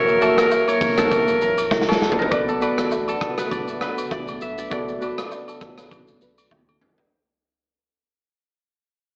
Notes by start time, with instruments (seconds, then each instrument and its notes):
Already playing: sub bass A#1, analog synth pad E3 F#3 A#3, synth keys A#3 F#4 C#5 E5, kora A#4 C#5 E5, alto saxophone A#4
0.08 shaker
0.20 synth keys A#3 F#4 C#5 E5, kora A4, high agogo, shaker
0.38 kora A#4, cross-stick, shaker
0.51 low woodblock, shaker
0.68 kora C#5, high agogo, shaker
0.81 sub bass A1, alto saxophone A#4, kick, open hi-hat, shaker
0.98 kora A4, cross-stick, mid tom, shaker
1.11 sub bass F#1, kick, hi-hat pedal, high agogo, shaker
1.28 shaker
1.41 sub bass A1, kora A#4, shaker
1.58 sub bass A#1, high agogo, shaker
1.71 sub bass F#1, kick, snare, low woodblock
1.81 snare
1.88 kora A4, snare, high agogo
2.01 sub bass A#1, snare
2.11 floor tom
2.18 kora A#4, floor tom
2.30 sub bass B1, analog synth pad D3 A3 B3, synth keys B3 F#4 A4 D5, kick, high agogo, shaker
2.48 kora A4, shaker
2.60 synth keys B3 F#4 A4 D5, kora B4, high agogo, shaker
2.78 sub bass A1, cross-stick, shaker
2.91 low woodblock, shaker
3.08 kora A4, high agogo, shaker
3.21 kick, cross-stick, shaker
3.38 kora B4, cross-stick, shaker
3.51 sub bass F#1, kora D5, kick, high agogo, shaker
3.68 shaker
3.81 kora B4, cross-stick, shaker
3.98 sub bass F#1, high agogo, shaker
4.11 sub bass A1, kora D5, kick, cross-stick, low woodblock, shaker
4.28 high agogo, shaker
4.41 sub bass B1, kora E5, shaker
4.58 kora D5, shaker
4.70 sub bass B1, analog synth pad C#3, synth keys B3 F#4 A4 D5, kora D5, kick, high agogo, shaker
4.88 shaker
5.00 synth keys B3 F#4 A4 D5, kora B4, high agogo, shaker
5.18 kora D5, cross-stick, shaker
5.31 low woodblock, shaker
5.48 kora A4, high agogo, shaker
5.61 sub bass A1, kick, cross-stick, shaker
5.78 kora B4, cross-stick, shaker
5.91 kick, high agogo, shaker
6.08 shaker
6.21 sub bass B1, kora B4, shaker
6.38 high agogo, shaker
6.51 sub bass D2, kick, high tom, low woodblock
6.69 kora A4, high agogo
6.81 sub bass A1, mid tom
6.98 kora B4, floor tom